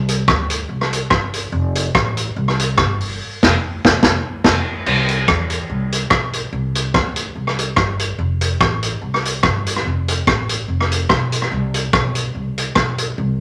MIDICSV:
0, 0, Header, 1, 3, 480
1, 0, Start_track
1, 0, Tempo, 416089
1, 1764, Time_signature, 4, 2, 24, 8
1, 15465, End_track
2, 0, Start_track
2, 0, Title_t, "Upright bass"
2, 0, Program_c, 0, 32
2, 0, Note_on_c, 0, 36, 113
2, 247, Note_off_c, 0, 36, 0
2, 322, Note_on_c, 0, 38, 97
2, 730, Note_off_c, 0, 38, 0
2, 795, Note_on_c, 0, 36, 92
2, 1207, Note_off_c, 0, 36, 0
2, 1277, Note_on_c, 0, 31, 96
2, 1689, Note_off_c, 0, 31, 0
2, 1756, Note_on_c, 0, 29, 114
2, 2169, Note_off_c, 0, 29, 0
2, 2248, Note_on_c, 0, 33, 101
2, 2655, Note_off_c, 0, 33, 0
2, 2727, Note_on_c, 0, 36, 106
2, 3204, Note_on_c, 0, 31, 89
2, 3221, Note_off_c, 0, 36, 0
2, 3686, Note_off_c, 0, 31, 0
2, 3959, Note_on_c, 0, 29, 108
2, 4102, Note_off_c, 0, 29, 0
2, 4436, Note_on_c, 0, 29, 97
2, 4580, Note_off_c, 0, 29, 0
2, 4647, Note_on_c, 0, 29, 103
2, 4831, Note_off_c, 0, 29, 0
2, 5127, Note_on_c, 0, 29, 106
2, 5311, Note_off_c, 0, 29, 0
2, 5611, Note_on_c, 0, 36, 111
2, 6019, Note_off_c, 0, 36, 0
2, 6093, Note_on_c, 0, 40, 97
2, 6500, Note_off_c, 0, 40, 0
2, 6571, Note_on_c, 0, 36, 98
2, 6979, Note_off_c, 0, 36, 0
2, 7047, Note_on_c, 0, 35, 84
2, 7457, Note_off_c, 0, 35, 0
2, 7527, Note_on_c, 0, 36, 111
2, 7937, Note_off_c, 0, 36, 0
2, 8008, Note_on_c, 0, 38, 98
2, 8417, Note_off_c, 0, 38, 0
2, 8485, Note_on_c, 0, 36, 94
2, 8895, Note_off_c, 0, 36, 0
2, 8962, Note_on_c, 0, 31, 97
2, 9373, Note_off_c, 0, 31, 0
2, 9442, Note_on_c, 0, 29, 108
2, 9853, Note_off_c, 0, 29, 0
2, 9926, Note_on_c, 0, 33, 103
2, 10336, Note_off_c, 0, 33, 0
2, 10400, Note_on_c, 0, 36, 93
2, 10884, Note_on_c, 0, 31, 96
2, 10902, Note_off_c, 0, 36, 0
2, 11294, Note_off_c, 0, 31, 0
2, 11362, Note_on_c, 0, 29, 103
2, 11772, Note_off_c, 0, 29, 0
2, 11851, Note_on_c, 0, 33, 100
2, 12257, Note_off_c, 0, 33, 0
2, 12322, Note_on_c, 0, 29, 95
2, 12732, Note_off_c, 0, 29, 0
2, 12804, Note_on_c, 0, 35, 91
2, 13212, Note_off_c, 0, 35, 0
2, 13286, Note_on_c, 0, 36, 105
2, 13693, Note_off_c, 0, 36, 0
2, 13766, Note_on_c, 0, 35, 102
2, 14173, Note_off_c, 0, 35, 0
2, 14243, Note_on_c, 0, 36, 91
2, 14651, Note_off_c, 0, 36, 0
2, 14720, Note_on_c, 0, 35, 86
2, 15129, Note_off_c, 0, 35, 0
2, 15205, Note_on_c, 0, 36, 115
2, 15465, Note_off_c, 0, 36, 0
2, 15465, End_track
3, 0, Start_track
3, 0, Title_t, "Drums"
3, 97, Note_on_c, 9, 42, 96
3, 213, Note_off_c, 9, 42, 0
3, 322, Note_on_c, 9, 36, 117
3, 322, Note_on_c, 9, 37, 127
3, 437, Note_off_c, 9, 36, 0
3, 437, Note_off_c, 9, 37, 0
3, 574, Note_on_c, 9, 42, 89
3, 690, Note_off_c, 9, 42, 0
3, 938, Note_on_c, 9, 37, 70
3, 1053, Note_off_c, 9, 37, 0
3, 1069, Note_on_c, 9, 42, 90
3, 1185, Note_off_c, 9, 42, 0
3, 1273, Note_on_c, 9, 37, 101
3, 1279, Note_on_c, 9, 36, 109
3, 1389, Note_off_c, 9, 37, 0
3, 1394, Note_off_c, 9, 36, 0
3, 1540, Note_on_c, 9, 42, 87
3, 1655, Note_off_c, 9, 42, 0
3, 2022, Note_on_c, 9, 42, 96
3, 2138, Note_off_c, 9, 42, 0
3, 2247, Note_on_c, 9, 36, 116
3, 2247, Note_on_c, 9, 37, 118
3, 2362, Note_off_c, 9, 36, 0
3, 2362, Note_off_c, 9, 37, 0
3, 2502, Note_on_c, 9, 42, 87
3, 2617, Note_off_c, 9, 42, 0
3, 2862, Note_on_c, 9, 37, 69
3, 2978, Note_off_c, 9, 37, 0
3, 2993, Note_on_c, 9, 42, 88
3, 3109, Note_off_c, 9, 42, 0
3, 3201, Note_on_c, 9, 37, 111
3, 3206, Note_on_c, 9, 36, 110
3, 3317, Note_off_c, 9, 37, 0
3, 3321, Note_off_c, 9, 36, 0
3, 3466, Note_on_c, 9, 46, 57
3, 3582, Note_off_c, 9, 46, 0
3, 3955, Note_on_c, 9, 38, 108
3, 3955, Note_on_c, 9, 49, 88
3, 3958, Note_on_c, 9, 36, 108
3, 4070, Note_off_c, 9, 38, 0
3, 4070, Note_off_c, 9, 49, 0
3, 4073, Note_off_c, 9, 36, 0
3, 4438, Note_on_c, 9, 36, 103
3, 4439, Note_on_c, 9, 38, 111
3, 4553, Note_off_c, 9, 36, 0
3, 4555, Note_off_c, 9, 38, 0
3, 4645, Note_on_c, 9, 38, 116
3, 4648, Note_on_c, 9, 36, 118
3, 4760, Note_off_c, 9, 38, 0
3, 4764, Note_off_c, 9, 36, 0
3, 5125, Note_on_c, 9, 38, 103
3, 5125, Note_on_c, 9, 49, 78
3, 5129, Note_on_c, 9, 36, 101
3, 5241, Note_off_c, 9, 38, 0
3, 5241, Note_off_c, 9, 49, 0
3, 5244, Note_off_c, 9, 36, 0
3, 5609, Note_on_c, 9, 49, 98
3, 5725, Note_off_c, 9, 49, 0
3, 5866, Note_on_c, 9, 42, 95
3, 5982, Note_off_c, 9, 42, 0
3, 6091, Note_on_c, 9, 36, 120
3, 6091, Note_on_c, 9, 37, 127
3, 6207, Note_off_c, 9, 36, 0
3, 6207, Note_off_c, 9, 37, 0
3, 6342, Note_on_c, 9, 42, 83
3, 6457, Note_off_c, 9, 42, 0
3, 6833, Note_on_c, 9, 42, 93
3, 6949, Note_off_c, 9, 42, 0
3, 7041, Note_on_c, 9, 37, 110
3, 7047, Note_on_c, 9, 36, 104
3, 7157, Note_off_c, 9, 37, 0
3, 7162, Note_off_c, 9, 36, 0
3, 7306, Note_on_c, 9, 42, 88
3, 7422, Note_off_c, 9, 42, 0
3, 7789, Note_on_c, 9, 42, 89
3, 7904, Note_off_c, 9, 42, 0
3, 8009, Note_on_c, 9, 36, 122
3, 8010, Note_on_c, 9, 37, 125
3, 8125, Note_off_c, 9, 36, 0
3, 8125, Note_off_c, 9, 37, 0
3, 8258, Note_on_c, 9, 42, 86
3, 8374, Note_off_c, 9, 42, 0
3, 8621, Note_on_c, 9, 37, 67
3, 8736, Note_off_c, 9, 37, 0
3, 8751, Note_on_c, 9, 42, 95
3, 8867, Note_off_c, 9, 42, 0
3, 8957, Note_on_c, 9, 37, 109
3, 8963, Note_on_c, 9, 36, 107
3, 9072, Note_off_c, 9, 37, 0
3, 9078, Note_off_c, 9, 36, 0
3, 9222, Note_on_c, 9, 42, 88
3, 9337, Note_off_c, 9, 42, 0
3, 9702, Note_on_c, 9, 42, 100
3, 9817, Note_off_c, 9, 42, 0
3, 9928, Note_on_c, 9, 36, 119
3, 9928, Note_on_c, 9, 37, 122
3, 10043, Note_off_c, 9, 36, 0
3, 10043, Note_off_c, 9, 37, 0
3, 10181, Note_on_c, 9, 42, 86
3, 10296, Note_off_c, 9, 42, 0
3, 10544, Note_on_c, 9, 37, 66
3, 10660, Note_off_c, 9, 37, 0
3, 10674, Note_on_c, 9, 42, 91
3, 10789, Note_off_c, 9, 42, 0
3, 10878, Note_on_c, 9, 37, 104
3, 10884, Note_on_c, 9, 36, 107
3, 10993, Note_off_c, 9, 37, 0
3, 10999, Note_off_c, 9, 36, 0
3, 11148, Note_on_c, 9, 42, 91
3, 11262, Note_on_c, 9, 37, 67
3, 11264, Note_off_c, 9, 42, 0
3, 11377, Note_off_c, 9, 37, 0
3, 11630, Note_on_c, 9, 42, 91
3, 11745, Note_off_c, 9, 42, 0
3, 11851, Note_on_c, 9, 36, 116
3, 11853, Note_on_c, 9, 37, 127
3, 11966, Note_off_c, 9, 36, 0
3, 11968, Note_off_c, 9, 37, 0
3, 12103, Note_on_c, 9, 42, 88
3, 12218, Note_off_c, 9, 42, 0
3, 12465, Note_on_c, 9, 37, 68
3, 12580, Note_off_c, 9, 37, 0
3, 12592, Note_on_c, 9, 42, 85
3, 12707, Note_off_c, 9, 42, 0
3, 12798, Note_on_c, 9, 37, 104
3, 12804, Note_on_c, 9, 36, 98
3, 12913, Note_off_c, 9, 37, 0
3, 12919, Note_off_c, 9, 36, 0
3, 13060, Note_on_c, 9, 42, 91
3, 13173, Note_on_c, 9, 37, 63
3, 13175, Note_off_c, 9, 42, 0
3, 13288, Note_off_c, 9, 37, 0
3, 13544, Note_on_c, 9, 42, 96
3, 13659, Note_off_c, 9, 42, 0
3, 13765, Note_on_c, 9, 37, 121
3, 13766, Note_on_c, 9, 36, 121
3, 13880, Note_off_c, 9, 37, 0
3, 13881, Note_off_c, 9, 36, 0
3, 14016, Note_on_c, 9, 42, 88
3, 14131, Note_off_c, 9, 42, 0
3, 14508, Note_on_c, 9, 42, 89
3, 14623, Note_off_c, 9, 42, 0
3, 14713, Note_on_c, 9, 37, 113
3, 14719, Note_on_c, 9, 36, 98
3, 14828, Note_off_c, 9, 37, 0
3, 14835, Note_off_c, 9, 36, 0
3, 14976, Note_on_c, 9, 42, 95
3, 15091, Note_off_c, 9, 42, 0
3, 15465, End_track
0, 0, End_of_file